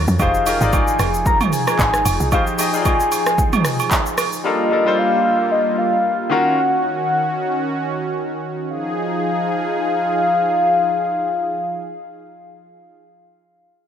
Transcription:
Already playing: D#3 F#3 C#4 F4 F#4 A#4 C#5
0.08 F2, shaker
0.19 F1 F3 D#4 G4 G#4 C5 F5, kick, high agogo, shaker
0.34 shaker
0.46 D#4 G4 G#4 A#4, open hi-hat, high agogo, shaker
0.60 G#1 D#4 F4 G#4 D5, shaker
0.73 G#5, kick, high agogo, shaker
0.88 shaker
0.99 F1, cross-stick, open hi-hat, high agogo, shaker
1.14 shaker
1.26 A#5, kick, shaker
1.41 mid tom, high agogo, shaker
1.53 G#5, open hi-hat, shaker
1.67 cross-stick, high agogo, shaker
1.79 G#1, kick, clap, low woodblock, shaker
1.94 cross-stick, shaker
2.05 F1, open hi-hat, high agogo, shaker
2.20 C2, shaker
2.32 D#4 G4 G#4 C5 F5, kick, high agogo, shaker
2.47 shaker
2.58 D#4 G4 G#4 D#5 G#5, open hi-hat, high agogo, shaker
2.73 D#4 F4 G#4 D5, shaker
2.82 D#5, kick, high agogo, shaker
3.00 shaker
3.12 open hi-hat, high agogo, shaker
3.27 cross-stick, shaker
3.38 kick, shaker
3.53 mid tom, high agogo, shaker
3.65 cross-stick, open hi-hat, shaker
3.79 high agogo, shaker
3.91 kick, clap, low woodblock, shaker
4.06 shaker
4.18 cross-stick, open hi-hat, high agogo, shaker
4.33 shaker
4.44 G3 A#3 D4 F4 A4 A#4 D#5
4.70 G3 D4 F4 A4 A#4
4.85 G3 D4 F4 A4 C5
4.98 F5
5.51 D#5
5.78 F5
6.30 D#3 C#4 F4 F#4 A#4 F#5
8.69 F3 D#4 G#4 F5

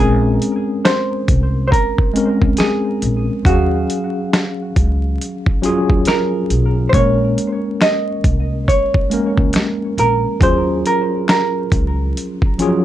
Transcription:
Already playing: A#1 G#3 C4 G#4
0.00 C#4 A#4
0.42 closed hi-hat
0.85 C5, snare, closed hi-hat
1.28 C2, kick, closed hi-hat
1.67 C5
1.72 A#4, kick, closed hi-hat
1.98 kick
2.14 G#3 C4 C#4 A#4, closed hi-hat
2.42 C#2, kick
2.57 G#4, snare, closed hi-hat
3.02 A#1, closed hi-hat
3.45 D#2 F#3 C#4 F#4 G#4 F5, kick, closed hi-hat
3.90 closed hi-hat
4.33 snare, closed hi-hat
4.76 C#2, kick, closed hi-hat
5.21 closed hi-hat
5.46 kick
5.62 F#3 C#4 F4 G#4, closed hi-hat
5.90 D#2, kick
6.05 A#4, snare, closed hi-hat
6.50 B1, closed hi-hat
6.89 A#1 G#3 C5, kick
6.94 A#3 C#4 A#4 C#5, closed hi-hat
7.38 closed hi-hat
7.81 D#5, finger snap, snare, closed hi-hat
8.24 C2, kick, closed hi-hat
8.68 C#5, kick, closed hi-hat
8.94 kick
9.10 G#3 A#3 C#4 A#4, closed hi-hat
9.37 C#2, kick
9.53 finger snap, snare, closed hi-hat
9.98 A#1 A#4, closed hi-hat
10.40 D#2 F#3 C#4 F4 G#4 C5, kick, closed hi-hat
10.85 A#4, closed hi-hat
11.28 A#4, finger snap, snare, closed hi-hat
11.72 C#2, kick, closed hi-hat
12.17 closed hi-hat
12.42 kick
12.58 F3 C#4 F4 G#4, closed hi-hat
12.65 F#3

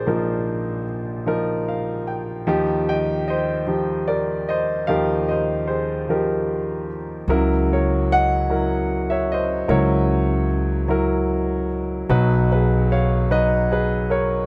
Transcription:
Already playing: F3 D#4 G4 G#4 A#4 C5 D5 D#5
0.07 A#1 A#2 F3 D#4 F4 A#4
1.26 F3 D#4 A#4
1.68 F5
2.07 G5
2.47 D#2 F3 D#4 G4
2.89 D#5 G5
3.28 C5 D#5
3.67 F3 D#4 G4
4.08 A#4 D5
4.49 C5 D#5
4.87 D#2 F3 D#4 G4 A#4 F5
5.28 C5 D#5
5.68 G#4 C5
6.09 F3 D#4 G4 A#4
7.28 C#2 C#3 F#3 E4 A#4
7.73 A#4 C#5
8.12 D#5 F#5
8.50 F#3 E4 A#4
9.10 C#5 E5
9.32 C5 D#5
9.68 C#2 C#3 F#3 E4 A#4 C#5
10.88 F#3 E4 A#4
12.09 B1 B2 F#3 D#4 B4
12.52 G#4 B4
12.92 C#5 F5
13.31 F#3 D#4 B4 D#5
13.72 G#4 B4
14.10 A#4 C#5

